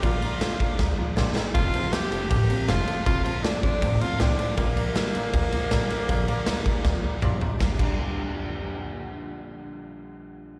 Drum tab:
CC |--------|--------|--------|--------|
RD |xxxx----|xxxxxxxx|xxxxxxxx|xxxxxxxx|
SD |--o-o-oo|--o---o-|--o---o-|--o---o-|
T2 |--------|--------|--------|--------|
FT |--------|--------|--------|--------|
BD |o--oo---|o---o---|o--oo---|o---o---|

CC |--------|-x------|--------|
RD |xxxx----|--------|--------|
SD |--o-o---|o-------|--------|
T2 |------o-|--------|--------|
FT |-------o|--------|--------|
BD |o--oo---|oo------|--------|